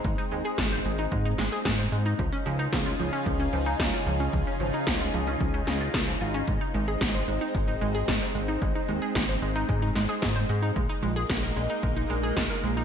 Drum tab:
HH |x-xxx-oxx-xxx-ox|x-xxx-oxx-xxx-ox|x-xxx-oxx-xxx-ox|x-xxx-oxx-xxx-ox|
SD |----o-----o-o---|----o-------o---|----o-----o-o---|----o-------o---|
BD |o---o---o---o---|o---o---o---o---|o---o---o---o---|o---o---o---o---|

HH |x-xxx-oxx-xxx-ox|x-xxx-oxx-xxx-ox|
SD |----o-----o-o---|----o-------o---|
BD |o---o---o---o---|o---o---o---o---|